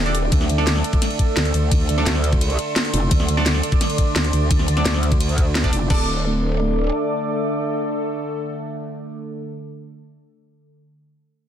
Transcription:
Already playing: D#1 D3 A3 C4 D4 A4 D5 D6
0.06 D4 A4 D5, closed hi-hat
0.15 open hi-hat
0.32 D2 A4, kick, closed hi-hat, ride bell
0.41 snare
0.50 closed hi-hat
0.58 D4 A4 D5, snare
0.67 snare, closed hi-hat, ride bell
0.76 snare
0.84 closed hi-hat
0.93 kick, closed hi-hat
1.02 snare, closed hi-hat, ride bell
1.11 closed hi-hat
1.19 C6, kick, closed hi-hat
1.37 D2, snare, closed hi-hat, ride bell
1.45 closed hi-hat
1.54 D2, open hi-hat
1.72 kick, closed hi-hat, ride bell
1.89 closed hi-hat
1.98 D4 A4 D5, snare
2.06 D2, snare, closed hi-hat, ride bell
2.15 snare
2.24 closed hi-hat
2.33 kick, closed hi-hat
2.41 closed hi-hat, ride bell
2.50 closed hi-hat
2.59 closed hi-hat
2.76 snare, closed hi-hat, ride bell
2.85 closed hi-hat
2.94 F1, open hi-hat
3.11 D2 D5, kick, closed hi-hat, ride bell
3.20 snare
3.29 closed hi-hat
3.37 D4 A4 D5, snare
3.46 snare, closed hi-hat, ride bell
3.55 snare
3.63 closed hi-hat
3.72 kick, closed hi-hat
3.81 snare, closed hi-hat, ride bell
3.90 closed hi-hat
3.98 kick, closed hi-hat
4.16 D2, snare, closed hi-hat, ride bell
4.24 closed hi-hat
4.33 D2, open hi-hat
4.51 kick, closed hi-hat, ride bell
4.59 snare
4.68 closed hi-hat
4.77 D4 A4 D5, snare, closed hi-hat
4.85 D2, snare, closed hi-hat, ride bell
4.94 snare
5.03 closed hi-hat
5.12 kick, closed hi-hat
5.20 closed hi-hat, ride bell
5.29 closed hi-hat
5.38 kick, closed hi-hat
5.55 snare, closed hi-hat, ride bell
5.64 D4 A4 D5, kick, closed hi-hat
5.73 F1, open hi-hat
5.90 D1 D3 A3 D4 A4 D5, kick, crash
5.95 A4
6.01 D5
6.06 D6

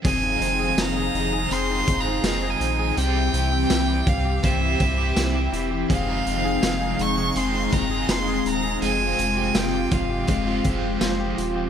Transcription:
0.02 F1 F2 C3 D#3 C4 D#4 G#4 C5 F5, kick, closed hi-hat
0.07 G#3 C4 F4 G#5
0.23 D#4
0.40 F1 C4, closed hi-hat
0.59 G#4
0.77 F1 D#4 A#5, snare, closed hi-hat, tambourine
0.96 G#4
1.14 F1 D#4, closed hi-hat
1.33 G#4
1.49 F1 D#3 G#3 C4 G#4 C6, closed hi-hat
1.54 F4
1.70 D#4
1.86 F1 G#3 C4 F4, kick, closed hi-hat
1.92 D#3
2.00 A#5
2.06 G#4
2.23 F1 D#4, snare, closed hi-hat, tambourine
2.42 G#4
2.50 G#5
2.60 A#1 D#4, closed hi-hat
2.79 G#4
2.95 C2 C3 E3 G3 C4 G4 G5, closed hi-hat
2.99 C4
3.03 G4
3.16 E4
3.33 C2 C4, closed hi-hat
3.52 G4
3.70 C2 E4, snare, closed hi-hat, tambourine
3.88 G4
4.07 C2 F5, kick, closed hi-hat
4.25 G4
4.43 C2 G3 C4 E4 G4 E5, kick, closed hi-hat
4.48 G4
4.62 E4
4.80 C2 C4 E4 G4, kick, closed hi-hat
4.85 C4
4.98 G4
5.16 C2 E4, snare, closed hi-hat, tambourine
5.34 G4
5.52 E1 E4, closed hi-hat
5.71 G4
5.88 F1 F2 C3 D#3 G#3 C4 D#4 G#4 F5, kick, closed hi-hat
5.93 G#3 C4 F5
5.97 F4
6.08 D#4
6.26 F1 C4, closed hi-hat
6.44 G#4
6.62 F1 D#4, snare, closed hi-hat, tambourine
6.81 G#4
6.99 F1 D#4 C#6, closed hi-hat
7.18 G#4
7.35 F1 D#3 G#3 C4 G#4 C6, closed hi-hat
7.40 F4
7.54 D#4
7.71 F1 G#3 C4 F4 A#5, kick, closed hi-hat
7.76 D#3
7.91 G#4
8.08 F1 D#4 C6, snare, closed hi-hat, tambourine
8.27 G#4
8.45 D#1 D#4 A#5, closed hi-hat
8.64 G#4
8.80 F1 F2 C3 F3 G#3 F4 F5 G#5, closed hi-hat
8.85 G#3 C4
9.01 F4
9.19 F1 C4, closed hi-hat
9.37 G4
9.55 F1 F4 G5, snare, closed hi-hat, tambourine
9.73 G4
9.91 F1 F4 F5, kick, closed hi-hat
10.10 G4
10.27 F1 F3 G#3 C4 G4, kick, closed hi-hat
10.33 G4
10.46 F4
10.64 F1 C4 G4, kick, closed hi-hat
10.68 F3 G#3
10.82 G4
11.01 F1 F4, snare, closed hi-hat, tambourine
11.19 G4
11.38 D#1 F4, closed hi-hat
11.56 G4

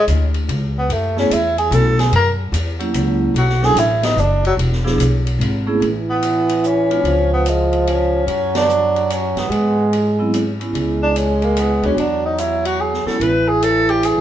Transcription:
0.08 D2, hi-hat pedal, ride
0.34 ride
0.48 C#2, ride
0.78 B3
0.89 F#2, ride
0.93 A3
1.16 A3 B3 C#4 E4 G#4, snare
1.30 E2 E4, hi-hat pedal, ride
1.58 G#4, ride
1.71 B1 A3 B3 C#4 E4 F#4 A4, hi-hat pedal, ride
1.99 G#4, snare, ride
2.12 F#2 A#4, ride
2.52 E2, hi-hat pedal, ride
2.79 F#3 A#3 C#4 E4 G4, ride
2.94 C#2, hi-hat pedal, ride
3.34 B1 F#4, ride
3.49 snare
3.62 F#3 C#4 D4 E4 G#4 A4, snare
3.75 A1 E4, hi-hat pedal, ride
4.03 D#4, snare, ride
4.16 F#1 D4, hi-hat pedal
4.45 F#3, ride
4.57 E1, ride
4.72 snare
4.84 F3 B3 D4 E4 G#4, snare
4.98 B1, hi-hat pedal, ride
5.27 ride
5.39 G#1, ride
5.66 A3 B3 C#4 E4 G#4
5.80 A1 E3, ride
6.10 B3
6.23 hi-hat pedal, ride
6.49 ride
6.64 C#4, hi-hat pedal
6.90 G#3 B3 D4 F4, ride
7.03 C#2 F3, ride
7.33 B3
7.46 G#3, hi-hat pedal, ride
7.73 ride
7.87 C#4, ride
8.27 F#2 F#3, ride
8.55 D4, snare, ride
8.69 hi-hat pedal
8.96 ride
9.10 C#4, hi-hat pedal, ride
9.36 G2 B3, snare, ride
9.49 G#2 G#3, ride
9.93 ride
10.19 F#3 B3 C4 E4
10.34 hi-hat pedal, ride
10.60 G#3 B3 C#4 E4, ride
10.73 C#2 G#3, ride
11.03 D4
11.16 C#4, hi-hat pedal, ride
11.42 A#3, ride
11.57 B3, hi-hat pedal, ride
11.83 D2 G#3 B3 C#4 D4 F#4, ride
11.96 E2 F#3 D4, ride
12.25 D#4
12.38 E4, hi-hat pedal, ride
12.65 F#4, ride
12.81 G#4
12.93 snare
13.06 G#3 B3 C#4 E4 A4, muted upright bass stroke, snare
13.20 A1 E3 B4, ride
13.48 G#4
13.62 A4, hi-hat pedal, ride
13.89 G4, ride
14.03 G#4, hi-hat pedal, ride
14.16 B1

